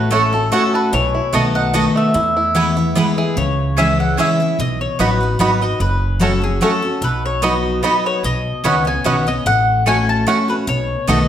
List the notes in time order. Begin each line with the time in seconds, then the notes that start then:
Already playing: A1 A3 F#4 B4
0.11 A3 C#4 F#4 A4 C#5 F#5
0.33 C#4 F#4 A4
0.52 A3 C#4 F#4 A4 C#5 F#5
0.74 A4 B4
0.93 B1 B2 E3 C#5
1.15 E4
1.33 B1 D#3 A3 B3 F#4 D#5 A5
1.55 D#4 F#5
1.74 D#3 A3 B3 F#4 D#5 A5
1.96 A3 E5
2.14 E2 E4
2.37 E4
2.55 E3 G#3 B3 E4 B4 G#5
2.77 B3 E4
2.95 E3 G#3 B3 E4 B4 G#5
3.18 E4 G#4
3.37 C#2 C#3 C#5
3.77 E3 G#3 C#4 E4 G#4 E5 G#5
4.00 F#5
4.17 E3 G#3 C#4 E4 G#4 E5 G#5
4.40 C#4 E4
4.59 B1 B2 D#5
4.81 C#5
4.99 A1 F#3 B3 D#4 F#4 B4 D#5 B5
5.21 D#4 F#4
5.39 G#1 F#3 B3 D#4 F#4 B4 D#5 B5
5.61 D#4 F#4 D#5
5.80 F#1 F#2 B4
6.20 F#3 A3 C#4 F#4 A4 C#5 F#5
6.42 C#4 F#4 G#4
6.61 F#3 A3 C#4 F#4 A4 C#5 F#5
6.82 C#4 F#4
7.01 B1 B2 B4
7.26 C#5
7.42 F#3 B3 D#4 F#4 D#5 B5
7.83 F#3 B3 D#4 F#4 D#5 B5
8.06 C#5
8.23 B1 B2 D#5
8.64 C#2 B2 D#3 B3 C#4 F#4 D#5 F#5 B5
8.85 B3 C#4 G#5
9.04 B1 B2 D#3 B3 C#4 F#4 D#5 F#5 B5
9.27 B3 C#4 D#5
9.46 A1 A3 F#5
9.86 A3 C#4 F#4 C#5 F#5 G#5
10.09 A5
10.27 A3 C#4 F#4 C#5 F#5
10.48 C#4 F#4 B4
10.67 B1 B2 C#5
11.07 B1 D#3 A3 B3 D#4 F#4 D#5 A5